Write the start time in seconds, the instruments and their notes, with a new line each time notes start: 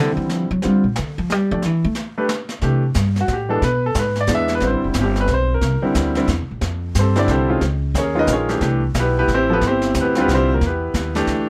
Already playing: upright bass D3, grand piano D3
0.00 grand piano G3 C4 E4
0.17 upright bass E3
0.29 upright bass F3, snare
0.51 upright bass F#3
0.62 grand piano D3 G3 C4 F4, upright bass G3, brush sweep, snare
0.84 upright bass A#2
0.96 upright bass D3, snare
1.18 upright bass F3
1.30 upright bass G3, snare
1.51 upright bass F3, grand piano A3 D4 G4 D5
1.62 upright bass E3, brush sweep, snare
1.84 upright bass A3
1.95 snare
2.18 grand piano A3 D4 G4 B4
2.29 snare
2.49 snare
2.61 upright bass C3, grand piano E3 A3 D4 G4, brush sweep, kick, snare
2.94 upright bass G2, kick, snare, hi-hat pedal
3.16 snare
3.21 grand piano F#4
3.28 upright bass A2, kick, snare
3.33 grand piano G4
3.49 grand piano E3 G#3 B3 D4 A4
3.62 upright bass B2, grand piano B4, brush sweep, kick, snare
3.86 grand piano A4
3.95 upright bass G#2, kick, snare, hi-hat pedal
3.99 grand piano B4
4.16 snare
4.20 grand piano D5
4.27 upright bass E2, grand piano E3 G#3 B3 D4, kick, snare, hi-hat pedal
4.35 grand piano E5
4.48 snare
4.55 grand piano B4
4.60 upright bass A1, grand piano D3 G3 C4 E4, brush sweep, kick, snare
4.67 grand piano C5
4.73 upright bass G1
4.84 upright bass E1
4.88 grand piano E4
4.94 upright bass G1, kick, snare, hi-hat pedal
5.01 grand piano G4
5.16 snare
5.20 grand piano B4
5.28 upright bass B1, kick, snare
5.34 grand piano C5
5.54 grand piano A#4
5.61 upright bass C2, brush sweep, kick, snare
5.82 grand piano D3 G3 C4 E4, muted upright bass stroke
5.94 upright bass D2, kick, snare, hi-hat pedal
6.15 grand piano D3 G3 C4 E4, snare
6.28 upright bass E2, kick, snare
6.39 upright bass C2
6.51 upright bass A#1
6.61 upright bass F2, brush sweep, kick, snare
6.95 upright bass G2, kick, snare, hi-hat pedal
6.99 grand piano C4 G4 A4 C5
7.16 grand piano D3 G3 C4 D4 E4 D5, snare
7.28 upright bass C2, grand piano C4 G4 A4 C5, kick, snare
7.49 grand piano D#3 G#3 C#4 F4
7.61 upright bass C#2, brush sweep, kick, snare
7.94 upright bass D#2, grand piano C#4 C#5, kick, snare, hi-hat pedal
7.99 grand piano G#4 A#4
8.15 grand piano D#3 G#3 C#4 F4
8.19 grand piano D#4 A#4 B4 D#5
8.27 upright bass A#1, kick, snare, hi-hat pedal
8.33 grand piano C#4 G#4 A#4 C#5
8.49 grand piano E3 A3 D4 G4, snare
8.61 upright bass C2, grand piano E3 A3 D4 G4, brush sweep, kick, snare
8.94 upright bass B1, kick, snare, hi-hat pedal
8.99 grand piano B3 E4 G4 B4
9.18 grand piano B3 E4 G4 B4
9.28 upright bass A1, kick, snare
9.34 grand piano C4 E4 G4 C5
9.49 grand piano F3 B3 E4 A4 B4
9.54 grand piano B3 E4 G4
9.61 upright bass G1, brush sweep, kick, snare
9.67 grand piano C4 E4 G4 C5
9.82 snare
9.94 upright bass D2, kick, snare, hi-hat pedal
10.01 grand piano B3 E4 G4 B4
10.15 grand piano D3 G3 C4 F4, snare
10.20 grand piano B3 E4 G4 B4
10.28 upright bass C2, kick, snare
10.34 grand piano C4 E4 G4 C5
10.54 grand piano A#3 A#4
10.61 upright bass E2, brush sweep, kick, snare
10.66 grand piano B3 E4 G4 B4
10.94 upright bass D#2, kick, snare, hi-hat pedal
11.15 grand piano E3 A3 D4 G4, snare
11.27 upright bass D2, kick, snare